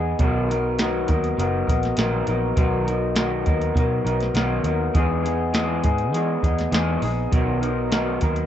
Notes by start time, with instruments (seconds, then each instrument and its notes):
Already playing: picked electric bass E2, clean electric guitar B3 D#4 G#4
0.19 picked electric bass B1, clean electric guitar B2 D#3 F#3 B3 D#4 A#4, kick, closed hi-hat
0.49 clean electric guitar F#3 B3 D#4 A#4, closed hi-hat
0.78 clean electric guitar B2 D#3 F#3 B3 D#4 A#4, snare, closed hi-hat
1.08 picked electric bass D#2, clean electric guitar F#3 B3 D#4 A#4, kick, closed hi-hat
1.24 closed hi-hat
1.37 picked electric bass F#1, clean electric guitar F#3 B3 D#4 A#4, closed hi-hat
1.67 picked electric bass A#1, clean electric guitar F#3 B3 D#4 A#4, kick, closed hi-hat
1.83 snare, closed hi-hat
1.97 picked electric bass A#1, clean electric guitar B2 D#3 F#3 B3 D#4 A#4, snare, closed hi-hat
2.26 picked electric bass A#1, clean electric guitar F#3 B3 D#4 A#4, closed hi-hat
2.56 picked electric bass B1, clean electric guitar B2 D#3 F#3 B3 D#4 A#4, kick, closed hi-hat
2.85 clean electric guitar F#3 B3 D#4 A#4, closed hi-hat
3.15 clean electric guitar B2 D#3 F#3 B3 D#4 A#4, snare, closed hi-hat
3.45 picked electric bass D#2, clean electric guitar F#3 B3 D#4 A#4, kick, closed hi-hat
3.61 closed hi-hat
3.74 picked electric bass B2, clean electric guitar F#3 B3 D#4 A#4, kick, closed hi-hat
4.04 picked electric bass B1, clean electric guitar F#3 B3 D#4 A#4, closed hi-hat
4.20 snare, closed hi-hat
4.34 picked electric bass B1, clean electric guitar B2 D#3 F#3 B3 D#4 A#4, snare, closed hi-hat
4.63 picked electric bass D#2, clean electric guitar F#3 B3 D#4 A#4, closed hi-hat
4.94 picked electric bass E2, clean electric guitar E3 G#3 B3 D#4 G#4, kick, closed hi-hat
5.23 clean electric guitar B3 D#4 G#4, closed hi-hat
5.53 clean electric guitar E3 G#3 B3 D#4 G#4, snare, closed hi-hat
5.83 picked electric bass G#2, clean electric guitar B3 D#4 G#4, kick, closed hi-hat
5.98 closed hi-hat
6.12 picked electric bass E3, clean electric guitar G#3 B3 D#4 G#4, closed hi-hat
6.42 picked electric bass E2, clean electric guitar B3 D#4 G#4, kick, closed hi-hat
6.58 snare, closed hi-hat
6.72 picked electric bass E2, clean electric guitar E3 G#3 B3 D#4 G#4, snare, closed hi-hat
7.02 picked electric bass A#1, clean electric guitar B3 D#4 G#4, open hi-hat
7.32 picked electric bass B1, clean electric guitar B2 D#3 F#3 B3 D#4 A#4, kick, closed hi-hat
7.61 clean electric guitar F#3 B3 D#4 A#4, closed hi-hat
7.91 clean electric guitar B2 D#3 F#3 B3 D#4 A#4, snare, closed hi-hat
8.21 picked electric bass D#2, clean electric guitar F#3 B3 D#4 A#4, kick, closed hi-hat
8.36 closed hi-hat